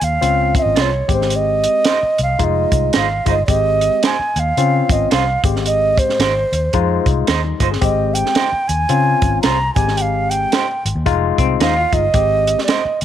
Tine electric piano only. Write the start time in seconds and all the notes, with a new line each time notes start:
0.21 C4 C#4 F4
1.08 G#3 B3 G4
1.15 C4
2.39 G#3 D#4 F4
3.25 G#3 D#4 F4
3.49 G#3 C4 G4
4.58 C4 C#4 F4
5.45 G#3 C4 G4
6.74 G#3 D#4 F4
7.44 G3 D#4
7.61 G#3 F4
7.71 C4 G#4
7.81 G#3 C4 G4
8.89 C4 C#4 F4
9.76 G#3 C4 G4
11.06 G#3 D#4 F4
11.92 G#3 D#4 F4
12.14 G#3 C4 G4